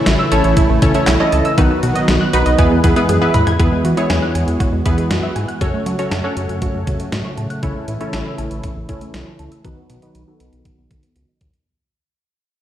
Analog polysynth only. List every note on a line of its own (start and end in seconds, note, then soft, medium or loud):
0.00 0.17 C#4 medium
0.00 0.17 E4 medium
0.00 0.18 A4 medium
0.00 0.17 C#5 loud
0.32 0.73 C#4 medium
0.32 0.73 E4 medium
0.32 0.73 A4 medium
0.32 0.73 C#5 loud
0.82 0.92 C#4 medium
0.82 0.92 E4 medium
0.82 0.92 A4 medium
0.82 0.92 C#5 loud
0.95 1.15 C#4 medium
0.95 1.15 E4 medium
0.95 1.15 A4 medium
0.95 1.15 C#5 loud
1.20 1.51 C#4 medium
1.20 1.51 E4 medium
1.20 1.51 A4 medium
1.20 1.51 D#5 loud
1.58 2.19 B3 medium
1.58 2.19 D#4 medium
1.58 2.19 F#4 medium
1.58 2.19 B4 loud
2.33 2.57 B3 medium
2.33 2.59 D#4 medium
2.33 2.59 F#4 medium
2.33 2.57 B4 loud
2.58 2.79 B3 medium
2.58 2.79 E4 medium
2.58 2.79 G#4 medium
2.58 2.79 B4 loud
2.84 2.94 B3 medium
2.84 2.94 E4 medium
2.84 2.94 G#4 medium
2.84 2.94 B4 loud
2.96 3.17 B3 medium
2.96 3.17 E4 medium
2.96 3.17 G#4 medium
2.96 3.17 B4 loud
3.22 3.52 B3 medium
3.22 3.52 E4 medium
3.22 3.52 G#4 medium
3.22 3.52 B4 loud
3.59 3.90 B3 medium
3.59 3.90 E4 medium
3.59 3.90 G#4 medium
3.59 3.90 B4 medium
3.97 4.69 B3 medium
3.97 4.69 E4 medium
3.97 4.69 G#4 medium
3.97 4.69 C#5 loud
4.85 5.47 B3 medium
4.85 5.47 E4 medium
4.85 5.47 G#4 medium
4.85 5.47 B4 medium
5.61 5.92 C#4 medium
5.61 5.92 F#4 medium
5.61 5.92 A4 medium
5.61 5.92 C#5 medium
5.99 6.19 C#4 medium
5.99 6.19 F#4 medium
5.99 6.19 A4 medium
5.99 6.19 C#5 medium
6.24 7.06 C#4 medium
6.24 7.06 F#4 medium
6.24 7.06 A4 medium
6.24 7.06 C#5 loud
7.63 7.93 C#4 medium
7.63 7.93 E4 medium
7.63 7.94 A4 medium
7.63 7.94 C#5 medium
8.01 8.72 C#4 medium
8.01 8.72 E4 medium
8.01 8.72 A4 medium
8.01 8.72 C#5 loud
8.89 9.50 C#4 medium
8.89 9.50 E4 medium
8.89 9.50 A4 medium
8.89 9.50 C#5 medium
9.65 9.95 B3 medium
9.65 9.95 D#4 medium
9.65 9.95 F#4 medium
9.65 9.95 B4 medium
10.02 10.23 B3 medium
10.02 10.23 D#4 medium
10.02 10.23 F#4 medium
10.02 10.23 B4 medium
10.28 11.09 B3 medium
10.28 11.09 D#4 medium
10.28 11.09 F#4 medium
10.28 11.09 A4 medium